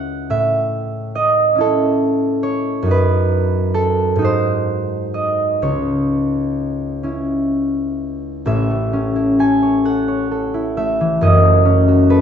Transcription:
0.00 0.33 C#2 soft
0.00 1.55 C#4 soft
0.00 1.57 E4 soft
0.00 0.29 E5 medium
0.00 0.60 F#5 medium
0.30 2.90 A2 soft
0.30 2.90 E5 medium
1.15 1.87 D#5 medium
1.55 2.90 C#4 soft
1.55 2.90 E4 soft
1.60 3.73 A4 medium
2.43 2.90 C#5 medium
2.82 4.24 F#2 medium
2.82 4.18 D#4 soft
2.88 4.19 F#4 soft
2.88 4.40 B4 medium
3.74 4.24 A4 medium
4.16 5.65 G#2 medium
4.16 5.65 D#4 soft
4.22 5.66 F#4 soft
4.22 5.65 C5 medium
5.14 5.66 D#5 medium
5.62 8.52 C#2 soft
5.62 9.53 C#5 medium
7.03 8.92 C#4 soft
7.03 9.14 E4 soft
8.45 11.25 A1 soft
8.45 11.25 A2 soft
8.45 10.76 E5 medium
8.70 10.76 A3 soft
8.93 11.64 C#4 soft
9.16 10.53 E4 soft
9.39 9.84 A4 soft
9.39 10.18 G#5 medium
9.62 10.07 C#5 soft
9.85 10.30 A4 soft
9.85 11.40 F#5 medium
10.08 12.21 C#5 soft
10.31 12.09 A4 soft
10.54 11.26 E4 soft
10.77 11.43 A3 soft
10.77 11.26 E5 medium
11.01 11.26 E3 soft
11.21 12.21 F#1 soft
11.21 12.21 F#2 medium
11.21 12.21 D#5 medium
11.44 12.21 A3 soft
11.65 12.21 C#4 soft
11.88 12.21 F#4 soft
12.10 12.21 A4 soft
12.10 12.21 B4 medium

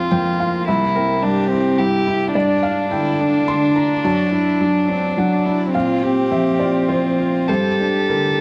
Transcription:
0.00 0.63 A#1 soft
0.00 0.12 F2 soft
0.00 0.13 C4 soft
0.00 0.70 C4 soft
0.00 0.28 F4 soft
0.00 0.67 F4 soft
0.00 0.70 C5 medium
0.11 0.56 F2 soft
0.11 1.23 A#3 soft
0.11 0.37 G5 medium
0.39 0.67 F4 soft
0.39 0.66 F5 medium
0.68 2.31 C2 medium
0.68 1.24 E4 soft
0.68 0.93 E5 medium
0.95 1.40 C4 soft
0.95 2.30 A#4 medium
1.23 1.68 G2 soft
1.23 1.50 D4 soft
1.23 1.81 G4 medium
1.51 1.80 C4 medium
1.51 1.96 E4 soft
1.78 2.23 G2 soft
1.78 2.33 E4 medium
1.78 2.33 G4 soft
2.07 2.35 E4 soft
2.34 4.01 G2 medium
2.34 5.70 D4 medium
2.34 2.90 D4 medium
2.34 2.61 D5 medium
2.63 3.09 D4 soft
2.63 2.89 F5 medium
2.91 3.37 D3 soft
2.91 3.22 E4 medium
2.91 3.44 G5 medium
3.21 4.05 D4 medium
3.21 3.65 D4 soft
3.48 3.93 D3 soft
3.48 3.74 C6 medium
3.76 4.04 D4 soft
3.76 4.02 A#5 medium
4.04 5.70 F#2 medium
4.04 4.32 F#4 medium
4.04 5.14 A5 medium
4.32 4.77 D4 soft
4.32 4.63 E4 medium
4.61 5.06 F#3 soft
4.61 4.92 D4 medium
4.89 5.20 C4 medium
4.89 5.34 D4 soft
5.17 5.63 F#3 soft
5.17 5.47 D4 soft
5.17 5.71 F#5 medium
5.46 5.75 D4 soft
5.46 5.74 E4 medium
5.74 7.45 A#2 soft
5.74 7.49 C4 soft
5.74 6.05 F4 medium
5.74 6.27 F5 medium
6.03 6.48 C4 soft
6.03 6.90 G4 medium
6.31 6.77 F3 soft
6.31 6.58 E5 medium
6.60 7.07 F4 soft
6.60 6.87 D5 medium
6.89 7.37 F3 soft
6.89 7.48 F4 soft
6.89 7.44 C5 medium
7.19 7.49 F4 soft
7.47 8.41 G2 soft
7.47 8.41 G4 medium
7.47 8.41 A4 soft
7.47 8.05 C5 medium
7.80 8.27 D4 soft
8.09 8.41 D3 soft
8.09 8.41 A#4 soft

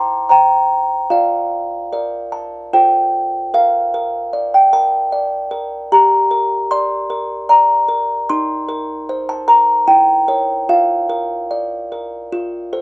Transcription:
0.00 0.27 C5 soft
0.00 0.27 G5 soft
0.00 0.28 A5 soft
0.00 0.29 C6 medium
0.29 1.07 C5 soft
0.29 1.08 G5 medium
0.29 1.07 A#5 medium
1.10 1.89 F4 medium
1.10 1.92 D5 medium
1.10 2.68 F5 medium
1.93 2.69 A#4 soft
1.93 2.69 D5 soft
2.32 2.71 A5 medium
2.73 3.51 F4 medium
2.73 3.50 A4 soft
2.73 3.50 C5 soft
2.73 3.50 G5 medium
3.54 3.93 A#4 medium
3.54 4.50 F5 medium
3.94 4.58 A#4 medium
4.33 4.97 D5 medium
4.54 4.74 G5 medium
4.73 5.36 A#4 medium
4.73 5.88 A5 medium
5.12 5.76 D5 medium
5.51 5.91 A#4 medium
5.92 8.26 G4 medium
5.92 6.68 A#5 medium
6.31 6.95 A#4 medium
6.71 7.35 D5 medium
6.71 7.47 C6 loud
7.10 7.74 A#4 medium
7.49 8.13 D5 medium
7.49 7.88 A#5 loud
7.88 8.29 A#4 medium
8.29 9.85 D#4 medium
8.29 9.25 C6 loud
8.69 9.33 A#4 medium
9.09 9.73 C5 medium
9.29 9.49 A5 loud
9.48 9.88 A#4 medium
9.48 9.87 A#5 loud
9.88 10.66 E4 medium
9.88 10.65 G5 loud
10.28 10.65 A#4 medium
10.28 10.65 C#5 medium
10.69 12.27 F4 medium
10.69 12.67 F5 medium
11.10 11.74 A#4 medium
11.51 12.15 D5 medium
11.92 12.32 A#4 soft
12.32 12.82 F4 medium
12.73 12.82 A4 medium
12.73 12.82 C5 soft

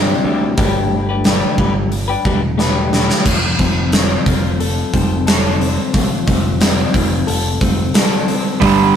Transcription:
0.00 0.13 G2 medium
0.00 0.56 C3 medium
0.00 0.24 E3 medium
0.00 0.24 C4 loud
0.00 0.25 D4 medium
0.00 0.25 G4 loud
0.24 0.52 D2 medium
0.24 0.56 E3 medium
0.24 0.57 C4 medium
0.24 0.57 D4 medium
0.24 0.57 G4 medium
0.57 1.41 G1 loud
0.57 1.24 G3 medium
0.57 1.25 A3 medium
0.57 1.09 D4 loud
0.57 1.09 G4 loud
0.57 1.08 B4 medium
0.57 kick loud
0.57 open hi-hat soft
1.09 1.25 D4 medium
1.09 1.26 G4 medium
1.09 1.26 B4 medium
1.24 1.92 G3 medium
1.24 1.57 A3 medium
1.24 1.58 D4 loud
1.24 1.59 G4 medium
1.24 1.59 B4 medium
1.24 snare loud
1.24 open hi-hat soft
1.58 2.14 G1 loud
1.58 1.75 A3 medium
1.58 1.74 D4 medium
1.58 1.74 G4 medium
1.58 1.74 B4 medium
1.58 kick medium
1.75 muted clean electric guitar stroke soft
1.92 open hi-hat soft
2.08 2.25 D4 medium
2.08 2.25 G4 medium
2.08 2.26 B4 medium
2.25 3.08 E1 medium
2.25 2.41 A3 medium
2.25 2.42 D4 medium
2.25 2.41 G4 medium
2.25 2.41 B4 medium
2.25 kick medium
2.58 3.23 G3 medium
2.58 2.92 A3 medium
2.58 2.92 D4 medium
2.58 2.93 G4 medium
2.58 2.93 B4 medium
2.58 snare medium
2.93 3.24 A3 medium
2.93 3.25 D4 medium
2.93 3.25 G4 medium
2.93 3.25 B4 medium
2.93 snare medium
3.10 snare medium
3.26 3.54 F1 medium
3.26 4.94 F3 medium
3.26 kick loud
3.26 crash loud
3.59 4.15 F1 medium
3.59 3.93 C4 medium
3.59 kick medium
3.59 open hi-hat soft
3.92 4.93 C4 medium
3.92 snare loud
3.92 open hi-hat medium
4.26 4.82 F1 medium
4.26 5.94 F4 medium
4.26 kick medium
4.26 open hi-hat medium
4.60 5.25 A4 medium
4.60 open hi-hat medium
4.94 5.77 F1 medium
4.94 5.59 C4 medium
4.94 kick medium
4.94 open hi-hat medium
5.27 6.94 A4 medium
5.27 snare loud
5.27 open hi-hat medium
5.60 6.26 C4 medium
5.60 open hi-hat medium
5.94 6.08 C2 medium
5.94 7.62 F3 medium
5.94 kick loud
5.94 open hi-hat medium
6.27 6.83 F1 medium
6.27 6.60 C4 medium
6.27 kick medium
6.27 open hi-hat medium
6.61 7.60 C4 medium
6.61 snare loud
6.61 open hi-hat medium
6.94 7.22 F1 medium
6.94 8.62 F4 medium
6.94 kick medium
6.94 open hi-hat medium
7.27 7.56 F1 loud
7.27 7.93 A4 medium
7.27 open hi-hat medium
7.61 7.89 F1 medium
7.61 8.27 C4 medium
7.61 kick medium
7.61 open hi-hat medium
7.94 8.62 A4 medium
7.94 snare loud
7.94 open hi-hat medium
8.28 8.62 C4 medium
8.28 open hi-hat medium
8.60 8.90 G1 loud
8.60 8.96 G2 medium
8.60 8.96 D3 loud
8.60 8.96 G3 medium
8.60 8.96 G3 loud
8.60 kick loud
8.60 open hi-hat medium

